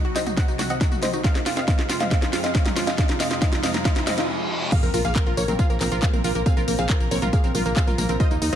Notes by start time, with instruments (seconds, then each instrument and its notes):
Already playing: analog synth pad C2 C3 F#3 D#4, riser
0.05 synth pluck F#4, synth arpeggio sound F#4, closed hi-hat
0.16 synth arpeggio sound C4, synth pluck C5 D#5, snare, open hi-hat, tambourine
0.26 synth arpeggio sound D#4, synth pluck F#4, closed hi-hat, mid tom, tambourine
0.37 synth arpeggio sound C4, synth pluck D#5 F#5, kick, snare, closed hi-hat, tambourine
0.48 synth arpeggio sound D#4, synth pluck F#4, closed hi-hat, tambourine
0.59 synth arpeggio sound F#4, synth pluck F#4, snare, open hi-hat, mid tom, tambourine
0.70 synth arpeggio sound C4, synth pluck D#5 F#5, closed hi-hat, tambourine
0.81 synth arpeggio sound D#4, synth pluck F#4, kick, snare, closed hi-hat, tambourine
0.92 synth arpeggio sound F#4, synth pluck F#4, closed hi-hat, mid tom, tambourine
1.02 synth arpeggio sound C4, synth pluck C5 D#5, snare, open hi-hat, mid tom, tambourine
1.13 synth arpeggio sound D#4, synth pluck F#4, closed hi-hat, tambourine
1.24 analog synth pad F2 G#3 F4, synth arpeggio sound C4, synth pluck D#5 F5, kick, snare, closed hi-hat, tambourine
1.35 synth arpeggio sound D#4, synth pluck F4, snare, closed hi-hat, tambourine
1.46 synth arpeggio sound F4, synth pluck F4, snare, open hi-hat, tambourine
1.57 synth arpeggio sound C4, synth pluck D#5 F5, snare, closed hi-hat, tambourine
1.68 synth arpeggio sound C4, synth pluck D#5 F5, kick, snare, closed hi-hat, tambourine
1.79 synth arpeggio sound D#4, synth pluck F4, snare, closed hi-hat
1.89 synth arpeggio sound F4, synth pluck F4, snare, open hi-hat, tambourine
2.00 synth arpeggio sound C4, synth pluck D#5 F5, snare, closed hi-hat, mid tom, tambourine
2.11 synth arpeggio sound C4, synth pluck D#5 F5, kick, snare, closed hi-hat, tambourine
2.22 synth arpeggio sound D#4, synth pluck F4, snare, closed hi-hat, tambourine
2.33 synth pluck F4, synth arpeggio sound F4, snare, open hi-hat, tambourine
2.44 synth arpeggio sound C4, synth pluck D#5 F5, snare, closed hi-hat, tambourine
2.55 synth arpeggio sound C4, synth pluck D#5 F5, kick, snare, closed hi-hat, tambourine
2.66 synth arpeggio sound D#4, synth pluck F4, snare, closed hi-hat, mid tom, tambourine
2.76 synth pluck F4, synth arpeggio sound F4, snare, open hi-hat, tambourine
2.87 synth arpeggio sound C4, synth pluck D#5 F5, snare, closed hi-hat, tambourine
2.98 synth arpeggio sound C4, synth pluck D#5 F5, kick, snare, closed hi-hat, tambourine
3.09 synth arpeggio sound D#4, synth pluck F4, snare, closed hi-hat, tambourine
3.20 synth arpeggio sound C4, synth pluck D#5 F5, snare, open hi-hat, tambourine
3.31 synth arpeggio sound D#4, synth pluck F4, snare, closed hi-hat, tambourine
3.42 synth arpeggio sound C4, synth pluck D#5 F5, kick, snare, closed hi-hat, tambourine
3.53 synth arpeggio sound D#4, synth pluck F4, snare, closed hi-hat, tambourine
3.63 synth arpeggio sound C4, synth pluck D#5 F5, snare, open hi-hat, tambourine
3.74 synth arpeggio sound D#4, synth pluck F4, snare, closed hi-hat, mid tom, tambourine
3.85 synth arpeggio sound C4, synth pluck D#5 F5, kick, snare, closed hi-hat, tambourine, reverse cymbal
3.96 synth arpeggio sound D#4, synth pluck F4, snare, closed hi-hat, tambourine
4.07 synth arpeggio sound C4, synth pluck D#5 F5, snare, open hi-hat, mid tom, tambourine
4.18 synth arpeggio sound D#4, synth pluck F4, snare, closed hi-hat, tambourine
4.72 analog synth pad A#3 C4 F4, synth arpeggio sound A#3, synth pluck G#4 F5, supersaw synth F5, kick, closed hi-hat, crash, tambourine, impact
4.83 fm bass A#1, synth arpeggio sound C4, supersaw synth A#4, synth pluck A#4, closed hi-hat, tambourine
4.94 fm bass A#1, synth arpeggio sound F4, synth pluck A#4, supersaw synth A#4, open hi-hat, tambourine
5.05 fm bass A#1, synth arpeggio sound A#3, synth pluck G#4 F5, supersaw synth F5, closed hi-hat, tambourine
5.16 synth arpeggio sound C4, synth pluck A#4, supersaw synth A#4, kick, clap, closed hi-hat, tambourine
5.26 fm bass A#1, synth arpeggio sound F4, synth pluck A#4, supersaw synth A#4, closed hi-hat
5.37 fm bass A#1, synth arpeggio sound A#3, synth pluck A#4 C#5, supersaw synth C#5, open hi-hat, tambourine
5.48 fm bass A#1, synth arpeggio sound C4, synth pluck A#4, supersaw synth A#4, closed hi-hat, mid tom, tambourine
5.59 synth arpeggio sound F4, synth pluck G#4 F5, supersaw synth F5, kick, closed hi-hat, tambourine
5.70 fm bass A#1, synth arpeggio sound A#3, synth pluck A#4, supersaw synth A#4, closed hi-hat, tambourine
5.81 fm bass A#1, synth arpeggio sound C4, synth pluck A#4, supersaw synth A#4, clap, open hi-hat, tambourine
5.92 fm bass A#1, synth arpeggio sound F4, synth pluck A#4, supersaw synth A#4, closed hi-hat, tambourine
6.02 synth arpeggio sound A#3, synth pluck G#4 F5, supersaw synth F5, kick, clap, closed hi-hat, tambourine
6.13 fm bass A#1, synth arpeggio sound C4, supersaw synth A#4, synth pluck A#4, closed hi-hat, mid tom, tambourine
6.24 fm bass A#1, synth arpeggio sound F4, synth pluck A#4, supersaw synth A#4, open hi-hat, tambourine
6.35 fm bass A#1, synth arpeggio sound A#3, synth pluck A#4, supersaw synth A#4, closed hi-hat, tambourine
6.46 synth arpeggio sound C4, synth pluck G#4 F5, supersaw synth F5, kick, closed hi-hat, tambourine
6.57 fm bass A#1, synth arpeggio sound F4, supersaw synth A#4, synth pluck A#4, closed hi-hat, tambourine
6.68 fm bass A#1, synth arpeggio sound A#3, synth pluck A#4, supersaw synth A#4, open hi-hat, tambourine
6.79 fm bass A#1, synth arpeggio sound C4, synth pluck G#4 F5, supersaw synth F5, closed hi-hat, tambourine
6.89 synth arpeggio sound F4, synth pluck A#4, supersaw synth A#4, kick, clap, closed hi-hat, tambourine
7.00 fm bass A#1, synth arpeggio sound A#3, synth pluck A#4, supersaw synth A#4, closed hi-hat, tambourine
7.11 fm bass A#1, synth arpeggio sound C4, synth pluck A#4 C#5, supersaw synth C#5, open hi-hat, tambourine
7.22 fm bass A#1, synth arpeggio sound F4, supersaw synth A#4, synth pluck A#4, closed hi-hat, mid tom, tambourine
7.33 synth arpeggio sound A#3, synth pluck G#4 F5, supersaw synth F5, kick, closed hi-hat, tambourine
7.44 fm bass A#1, synth arpeggio sound C4, synth pluck A#4, supersaw synth A#4, closed hi-hat, tambourine
7.55 fm bass A#1, synth arpeggio sound F4, supersaw synth A#4, synth pluck A#4, open hi-hat, mid tom, tambourine
7.66 fm bass A#1, synth arpeggio sound A#3, supersaw synth A#4, synth pluck A#4, closed hi-hat, tambourine
7.76 synth arpeggio sound C4, synth pluck G#4 F5, supersaw synth F5, kick, clap, closed hi-hat, tambourine
7.87 fm bass A#1, synth arpeggio sound F4, supersaw synth A#4, synth pluck A#4, closed hi-hat, mid tom, tambourine
7.98 fm bass A#1, synth arpeggio sound A#3, supersaw synth A#4, synth pluck A#4, open hi-hat, mid tom, tambourine
8.09 fm bass A#1, synth arpeggio sound C4, synth pluck A#4, supersaw synth A#4, closed hi-hat, tambourine
8.20 analog synth pad D#3 D#4 A#4, synth arpeggio sound F4, synth pluck C5 D#5, supersaw synth D#5, kick, closed hi-hat, tambourine
8.31 fm bass D#2, synth arpeggio sound A#3, supersaw synth D#4, synth pluck D#4, closed hi-hat, tambourine
8.42 fm bass D#2, supersaw synth D#4, synth pluck D#4, synth arpeggio sound D#4, open hi-hat, tambourine